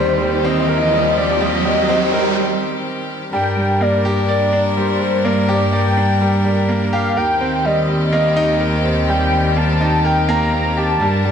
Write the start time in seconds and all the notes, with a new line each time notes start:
Already playing: D#2 D#3 G3 C4 G4 C5, riser
0.21 G3
0.44 C4 D#5
0.69 A#4
0.81 D#5
0.93 G3
1.17 G3 D5
1.41 G3 D#5
1.65 G3
1.89 C4
2.13 A#4
3.33 G2 G3 D4 A#4 G5
3.57 G3
3.81 A#3 D5
4.05 G4
4.28 D5
4.53 D4
4.77 G3 C5
5.01 G3
5.25 A#3 D5
5.49 G4
5.73 D5 G5
5.97 D4
6.21 G3
6.45 G3
6.69 A#3
6.93 G4 F5
7.17 D#2 D#3 C4 G4 A#4 G5
7.41 C4
7.65 G3 D#5
7.89 G3
8.13 A#3 D#5
8.37 D#4
8.61 A#4
8.85 C4
9.09 G3 G5
9.33 G3
9.57 A#3 A5
9.81 D#4
10.05 A#4 G5
10.29 A#3 A#5
10.53 A#3
10.77 G4 A5
11.01 G2 G3 D4 A#4
11.25 G3